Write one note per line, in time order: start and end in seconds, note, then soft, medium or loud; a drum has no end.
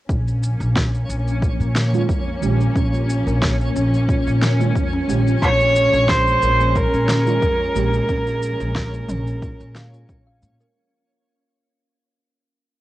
0.09 0.50 A#1 medium
0.09 10.71 F3 medium
0.09 5.38 A#3 medium
0.09 10.71 C#4 medium
0.09 10.77 C#4 medium
0.09 kick loud
0.09 shaker soft
0.27 shaker soft
0.43 shaker medium
0.60 1.00 A#1 medium
0.60 shaker soft
0.76 kick loud
0.76 snare medium
0.76 shaker soft
0.95 shaker soft
1.09 1.50 A#1 medium
1.09 shaker medium
1.28 shaker soft
1.42 kick medium
1.42 shaker soft
1.60 2.00 A#2 medium
1.60 shaker soft
1.76 snare medium
1.76 shaker medium
1.93 2.05 D#3 medium
1.93 2.05 G#3 medium
1.93 2.06 C#4 medium
1.93 2.06 F4 medium
1.93 shaker soft
2.09 kick loud
2.09 shaker soft
2.41 2.65 A#1 medium
2.41 2.56 D#3 medium
2.41 2.56 G#3 medium
2.41 2.56 C#4 medium
2.41 2.57 G4 medium
2.41 shaker medium
2.61 shaker soft
2.76 3.17 A#1 medium
2.76 2.92 C#4 medium
2.76 kick loud
2.76 shaker soft
2.93 3.25 F4 medium
2.93 shaker soft
3.10 shaker medium
3.27 3.67 A#1 medium
3.27 3.41 A#4 medium
3.27 shaker soft
3.42 kick loud
3.42 snare medium
3.42 shaker soft
3.60 3.75 A#3 medium
3.60 shaker soft
3.76 4.17 A#1 medium
3.76 3.93 C#4 medium
3.76 shaker medium
3.94 shaker soft
4.09 4.41 F4 medium
4.09 kick loud
4.09 shaker soft
4.27 4.67 A#2 loud
4.27 shaker soft
4.42 4.58 A#4 medium
4.42 snare medium
4.42 shaker medium
4.59 4.72 D#3 medium
4.59 4.72 G#3 medium
4.59 4.92 A#3 medium
4.59 4.72 C#4 medium
4.59 4.73 F4 medium
4.59 shaker soft
4.76 4.98 F2 medium
4.76 kick medium
4.76 shaker soft
4.93 5.08 C#4 medium
5.08 5.32 A#1 medium
5.08 5.22 D#3 medium
5.08 5.23 G#3 medium
5.08 5.23 C#4 medium
5.08 5.23 G4 medium
5.08 shaker medium
5.27 5.41 F4 loud
5.27 shaker soft
5.42 5.84 A#1 medium
5.42 10.72 G#3 medium
5.42 5.74 A#3 medium
5.42 6.11 C#5 loud
5.42 kick loud
5.42 shaker soft
5.60 shaker soft
5.76 6.07 C#4 medium
5.76 shaker medium
5.93 6.34 A#1 loud
5.93 shaker soft
6.09 6.41 F4 medium
6.09 6.78 C5 loud
6.09 kick loud
6.09 snare medium
6.09 shaker soft
6.27 shaker soft
6.42 6.84 A#1 medium
6.42 6.59 A#4 medium
6.42 shaker medium
6.60 6.69 A#3 medium
6.60 shaker soft
6.76 10.09 A#4 medium
6.76 kick loud
6.76 shaker soft
6.94 7.34 A#2 medium
6.94 7.25 C#4 medium
6.94 shaker soft
7.09 snare medium
7.09 shaker medium
7.26 7.38 D#3 medium
7.26 7.39 G#3 medium
7.26 7.39 C#4 medium
7.26 7.41 F4 loud
7.26 7.39 F4 medium
7.26 shaker soft
7.42 7.65 F2 medium
7.42 7.74 A#4 medium
7.42 kick loud
7.42 shaker soft
7.75 7.98 A#1 loud
7.75 7.89 D#3 medium
7.75 7.89 G#3 medium
7.75 7.93 A#3 medium
7.75 7.90 C#4 medium
7.75 7.90 G4 medium
7.75 shaker medium
7.93 shaker soft
8.09 8.50 A#1 loud
8.09 8.25 C#4 medium
8.09 kick loud
8.09 shaker soft
8.27 8.58 F4 medium
8.27 shaker soft
8.43 shaker medium
8.60 9.00 A#1 loud
8.60 8.75 A#4 medium
8.60 shaker soft
8.76 kick loud
8.76 snare medium
8.76 shaker soft
8.94 9.08 A#3 medium
8.94 shaker soft
9.09 9.50 A#1 medium
9.09 9.26 C#4 medium
9.09 mid tom medium
9.09 shaker medium
9.27 shaker soft
9.42 9.58 F4 medium
9.42 kick loud
9.42 shaker soft
9.60 10.01 A#2 medium
9.60 shaker soft
9.75 9.93 F5 medium
9.75 snare medium
9.75 shaker medium
9.93 10.08 F4 medium
9.93 shaker soft
10.09 kick loud
10.09 shaker soft
10.27 10.41 F5 medium
10.42 10.54 A#2 medium
10.42 10.58 A#3 medium
10.42 shaker medium
10.60 10.74 A#4 medium
10.60 shaker soft